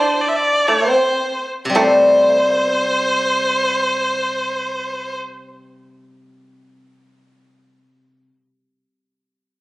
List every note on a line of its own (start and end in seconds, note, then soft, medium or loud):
0.00 0.65 D4 medium
0.00 0.22 C5 medium
0.21 0.30 D5 medium
0.28 0.37 E5 medium
0.36 0.68 D5 medium
0.67 0.92 A3 soft
0.67 0.88 C#5 medium
0.88 1.46 C5 medium
0.92 1.43 C4 soft
1.65 8.28 C3 soft
1.70 7.76 G3 soft
1.70 5.16 C5 medium
1.75 2.30 A3 medium
1.75 6.85 C4 soft
2.30 2.56 A#3 medium
2.56 2.83 B3 medium
2.83 5.19 C4 medium